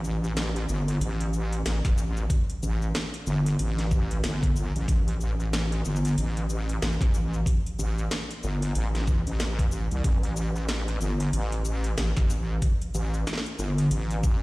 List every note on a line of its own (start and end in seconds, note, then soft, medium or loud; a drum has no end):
0.00 0.67 A1 loud
0.04 shaker medium
0.24 shaker soft
0.37 snare loud
0.37 snare medium
0.37 closed hi-hat medium
0.37 shaker soft
0.56 closed hi-hat soft
0.56 shaker soft
0.69 0.99 G1 loud
0.69 shaker medium
0.88 closed hi-hat medium
0.88 shaker soft
1.01 1.63 A1 loud
1.01 closed hi-hat medium
1.01 shaker soft
1.21 closed hi-hat soft
1.21 shaker soft
1.33 shaker medium
1.53 closed hi-hat soft
1.53 shaker soft
1.66 1.82 A1 medium
1.66 snare loud
1.66 closed hi-hat medium
1.66 shaker soft
1.85 2.28 A1 loud
1.85 kick loud
1.85 snare soft
1.85 closed hi-hat medium
1.85 shaker soft
1.98 shaker medium
2.17 shaker soft
2.30 kick loud
2.30 closed hi-hat medium
2.30 shaker soft
2.50 closed hi-hat soft
2.50 shaker soft
2.63 2.93 A1 loud
2.63 shaker medium
2.82 shaker soft
2.95 snare loud
2.95 snare medium
2.95 closed hi-hat medium
2.95 shaker soft
3.14 closed hi-hat soft
3.14 shaker soft
3.27 3.57 G1 medium
3.27 shaker medium
3.46 closed hi-hat medium
3.46 shaker soft
3.59 4.22 A1 loud
3.59 closed hi-hat medium
3.59 shaker soft
3.79 snare soft
3.79 closed hi-hat soft
3.79 shaker soft
3.91 kick loud
3.91 shaker medium
4.11 closed hi-hat soft
4.11 shaker soft
4.24 4.72 G1 loud
4.24 snare loud
4.24 closed hi-hat medium
4.24 shaker soft
4.43 kick loud
4.43 closed hi-hat medium
4.43 shaker soft
4.56 shaker medium
4.76 4.87 A1 loud
4.76 closed hi-hat soft
4.76 shaker soft
4.88 5.83 A1 loud
4.88 kick loud
4.88 closed hi-hat medium
4.88 shaker soft
5.08 closed hi-hat soft
5.08 shaker soft
5.21 shaker medium
5.40 shaker soft
5.53 snare loud
5.53 snare medium
5.53 closed hi-hat medium
5.53 shaker soft
5.72 closed hi-hat soft
5.72 shaker soft
5.85 6.16 G1 loud
5.85 shaker medium
5.96 shaker medium
6.05 closed hi-hat medium
6.05 shaker soft
6.07 shaker soft
6.18 6.80 A1 loud
6.18 closed hi-hat medium
6.18 shaker soft
6.37 closed hi-hat soft
6.37 shaker soft
6.50 shaker medium
6.69 closed hi-hat soft
6.69 shaker soft
6.82 6.98 A1 medium
6.82 snare loud
6.82 closed hi-hat medium
6.82 shaker soft
6.92 shaker soft
7.01 7.44 A1 medium
7.01 kick loud
7.01 snare soft
7.01 closed hi-hat medium
7.14 shaker medium
7.34 shaker soft
7.46 kick loud
7.46 closed hi-hat medium
7.46 shaker soft
7.66 closed hi-hat soft
7.66 shaker soft
7.79 8.09 A1 loud
7.79 shaker medium
7.98 shaker soft
8.11 snare loud
8.11 snare soft
8.11 closed hi-hat medium
8.11 shaker soft
8.31 closed hi-hat soft
8.31 shaker soft
8.43 8.74 G1 loud
8.43 shaker medium
8.62 closed hi-hat medium
8.62 shaker soft
8.75 9.24 A1 loud
8.75 closed hi-hat medium
8.75 shaker soft
8.95 snare soft
8.95 closed hi-hat soft
8.95 shaker soft
8.98 snare soft
9.01 snare soft
9.05 kick loud
9.05 snare soft
9.05 shaker medium
9.27 9.88 A1 medium
9.27 closed hi-hat soft
9.27 shaker soft
9.40 snare loud
9.40 closed hi-hat medium
9.40 shaker soft
9.59 kick loud
9.59 closed hi-hat medium
9.59 shaker soft
9.72 shaker medium
9.91 10.03 C2 loud
9.91 closed hi-hat soft
9.91 shaker soft
10.04 10.99 A1 loud
10.04 kick loud
10.04 closed hi-hat medium
10.04 shaker soft
10.23 closed hi-hat soft
10.23 shaker soft
10.37 shaker medium
10.56 shaker soft
10.69 snare loud
10.69 snare medium
10.69 closed hi-hat medium
10.69 shaker soft
10.88 closed hi-hat soft
10.88 shaker soft
11.01 11.31 G1 medium
11.01 shaker medium
11.20 closed hi-hat soft
11.20 shaker soft
11.33 11.96 A1 loud
11.33 closed hi-hat medium
11.33 shaker soft
11.52 closed hi-hat soft
11.52 shaker soft
11.65 shaker medium
11.84 closed hi-hat soft
11.84 shaker soft
11.98 12.14 A1 loud
11.98 snare loud
11.98 closed hi-hat medium
11.98 shaker soft
12.17 12.60 A1 loud
12.17 kick loud
12.17 snare soft
12.17 closed hi-hat soft
12.17 shaker soft
12.30 shaker medium
12.62 kick loud
12.62 closed hi-hat medium
12.62 shaker soft
12.82 closed hi-hat soft
12.82 shaker soft
12.94 13.25 A1 loud
12.94 shaker medium
13.14 shaker soft
13.27 snare medium
13.27 closed hi-hat medium
13.27 shaker soft
13.33 snare medium
13.38 snare medium
13.46 closed hi-hat soft
13.46 shaker soft
13.59 13.89 G1 loud
13.59 shaker medium
13.78 closed hi-hat soft
13.78 shaker soft
13.91 14.43 A1 loud
13.91 closed hi-hat medium
13.91 shaker soft
14.11 closed hi-hat soft
14.11 shaker soft
14.23 kick loud
14.23 shaker medium